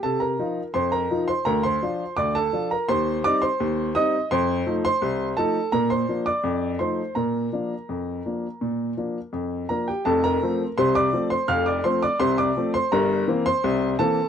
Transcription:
<<
  \new Staff \with { instrumentName = "Upright piano" } { \time 2/4 \key bes \major \tempo 4 = 84 <a' a''>16 <bes' bes''>8. <c'' c'''>16 <bes' bes''>8 <c'' c'''>16 | <bes' bes''>16 <c'' c'''>8. <d'' d'''>16 <a' a''>8 <bes' bes''>16 | <c'' c'''>8 <d'' d'''>16 <c'' c'''>8. <ees'' ees'''>8 | <c'' c'''>8. <c'' c'''>8. <a' a''>8 |
<bes' bes''>16 <c'' c'''>8 <d'' d'''>8. <c'' c'''>8 | <bes' bes''>2~ | <bes' bes''>4 r8 <bes' bes''>16 <g' g''>16 | \key f \major <a' a''>16 <bes' bes''>8. <c'' c'''>16 <d'' d'''>8 <c'' c'''>16 |
<f'' f'''>16 <d'' d'''>16 <c'' c'''>16 <d'' d'''>16 <c'' c'''>16 <d'' d'''>8 <c'' c'''>16 | <bes' bes''>8. <c'' c'''>8. <a' a''>8 | }
  \new Staff \with { instrumentName = "Upright piano" } { \clef bass \time 2/4 \key bes \major c8 <f ees' f'>8 f,8 <f ees' f'>8 | d,8 <f d' f'>8 d,8 <f d' f'>8 | ees,8 <g c' ees'>8 ees,8 <g c' ees'>8 | f,8 <f a ees'>8 c,8 <f a ees'>8 |
bes,8 <f bes d'>8 f,8 <f a ees'>8 | bes,8 <f bes d'>8 f,8 <f bes d'>8 | bes,8 <f bes d'>8 f,8 <f bes d'>8 | \key f \major <f,, f,>8 <f a c'>8 <c, c>8 <f a c'>8 |
<f,, f,>8 <f a c'>8 <c, c>8 <f a c'>8 | <g,, g,>8 <e bes c'>8 <c, c>8 <e bes c'>8 | }
>>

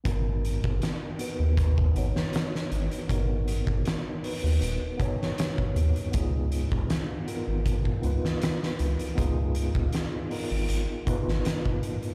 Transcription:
<<
  \new Staff \with { instrumentName = "Tine electric piano" } { \time 4/4 \key gis \dorian \tempo 4 = 79 <b dis' fis' ais'>4. <b dis' fis' b'>4 <b dis' fis' cis''>4. | <b dis' fis' ais'>4. <b dis' fis' b'>4 <b dis' fis' cis''>4. | <b dis' eis' gis'>4. <b dis' eis' ais'>4 <b dis' eis' b'>4. | <b dis' eis' gis'>4. <b dis' eis' ais'>4 <b dis' eis' b'>4. | }
  \new Staff \with { instrumentName = "Analog synth bass" } { \clef bass \time 4/4 \key gis \dorian gis,,8. gis,,16 r8. dis,8. gis,,16 r8. gis,,16 r16 | gis,,8. gis,,16 r8. dis,16 dis,,16 r4 r16 dis,16 r16 | cis,8. cis,16 r8. gis,,8. cis,16 r8. cis,16 r16 | cis,8. cis,16 r8. gis,,16 gis,,16 r8 gis,,16 r4 | }
  \new DrumStaff \with { instrumentName = "Drums" } \drummode { \time 4/4 <hh bd>8 hh16 bd16 <hh sn>8 hh8 <hh bd>16 bd16 hh16 sn16 <hh sn>16 sn16 hh16 hh16 | <hh bd>8 hh16 bd16 <hh sn>8 hho8 hh8 <hh bd>16 sn16 <hh sn>16 bd16 hh16 hh16 | <hh bd>8 hh16 bd16 <hh sn>8 hh8 <hh bd>16 bd16 hh16 sn16 <hh sn>16 sn16 hh16 hh16 | <hh bd>8 hh16 bd16 <hh sn>8 hho8 hh8 <hh bd>16 sn16 <hh sn>16 bd16 hh16 hh16 | }
>>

